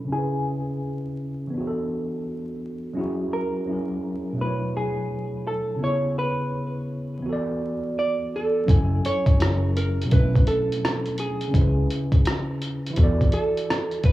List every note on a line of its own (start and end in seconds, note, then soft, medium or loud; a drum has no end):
0.00 0.13 B2 medium
0.00 0.13 F#3 medium
0.00 0.08 C#4 medium
0.00 0.13 D4 medium
0.00 0.10 E4 medium
0.00 0.12 A4 medium
0.00 0.12 B4 medium
0.05 1.48 C#3 medium
0.05 1.50 C#4 medium
0.12 1.51 E4 medium
0.12 1.15 G#4 medium
0.12 1.53 G#4 medium
0.19 1.55 B4 medium
1.47 2.90 E3 medium
1.47 2.92 B3 medium
1.54 2.94 D4 medium
1.54 2.96 F#4 medium
1.60 1.66 G#4 medium
1.67 3.01 A4 medium
2.94 3.64 F#3 medium
2.94 3.66 C#4 medium
2.94 3.68 E4 medium
2.99 3.70 F#4 medium
2.99 3.69 G#4 medium
3.33 4.41 A#4 medium
3.66 4.34 F#3 medium
3.66 4.39 C#4 medium
3.66 4.40 E4 medium
3.71 4.41 G#4 soft
3.71 4.42 A#4 medium
4.33 5.76 B2 medium
4.33 5.78 F#3 medium
4.38 5.79 A3 medium
4.38 5.80 D4 medium
4.38 4.76 B4 medium
4.44 5.81 E4 medium
4.44 5.83 C#5 medium
4.77 5.43 G#4 medium
5.47 5.83 A4 medium
5.76 7.19 C#3 medium
5.76 7.21 B3 medium
5.82 7.22 E4 medium
5.82 7.24 G#4 medium
5.82 6.16 C#5 medium
5.89 7.26 C#5 medium
6.19 7.98 B4 medium
7.19 8.62 E3 medium
7.19 8.64 B3 medium
7.26 8.66 F#4 medium
7.26 8.67 A4 medium
7.33 8.69 D5 medium
7.99 8.65 D5 medium
8.36 9.02 A4 medium
8.65 8.99 F#1 loud
8.65 9.35 F#3 medium
8.65 9.37 C#4 medium
8.65 9.39 E4 medium
8.65 kick loud
8.69 9.41 A4 medium
8.69 9.40 G#5 medium
8.69 closed hi-hat medium
9.05 9.72 C#5 loud
9.05 closed hi-hat medium
9.26 kick loud
9.26 closed hi-hat medium
9.36 10.06 F#3 medium
9.36 10.09 C#4 medium
9.36 10.11 E4 medium
9.36 closed hi-hat medium
9.41 10.02 F#1 loud
9.41 10.12 G#4 medium
9.41 10.13 A#4 medium
9.41 cross-stick loud
9.77 10.09 A#4 medium
9.77 closed hi-hat medium
10.02 11.48 B2 medium
10.02 closed hi-hat soft
10.07 11.49 F#3 medium
10.07 11.50 C#4 medium
10.07 closed hi-hat medium
10.12 10.43 B1 medium
10.12 11.52 D4 medium
10.12 11.53 E4 medium
10.12 10.47 B4 loud
10.12 kick medium
10.18 11.55 A3 medium
10.35 kick medium
10.35 closed hi-hat soft
10.47 11.19 A4 medium
10.47 closed hi-hat medium
10.72 closed hi-hat soft
10.85 cross-stick loud
10.85 closed hi-hat loud
11.06 closed hi-hat soft
11.18 12.58 G#4 medium
11.18 closed hi-hat medium
11.41 closed hi-hat soft
11.48 12.91 C#3 medium
11.48 12.93 C#4 medium
11.54 11.85 C#2 loud
11.54 12.92 E4 medium
11.54 kick loud
11.54 closed hi-hat medium
11.58 12.96 G#4 medium
11.58 12.98 B4 medium
11.90 closed hi-hat medium
12.12 kick medium
12.12 closed hi-hat soft
12.25 cross-stick loud
12.25 closed hi-hat medium
12.62 closed hi-hat medium
12.86 14.12 E3 medium
12.86 closed hi-hat soft
12.93 14.12 E4 medium
12.93 14.12 F#4 medium
12.93 closed hi-hat medium
12.98 13.28 E2 loud
12.98 14.12 A4 medium
12.98 kick medium
13.03 14.12 D5 medium
13.21 kick medium
13.21 closed hi-hat soft
13.32 14.05 A4 medium
13.32 closed hi-hat medium
13.57 closed hi-hat soft
13.70 cross-stick loud
13.70 closed hi-hat loud
13.91 closed hi-hat soft
14.04 14.12 B4 medium
14.04 kick loud
14.04 closed hi-hat medium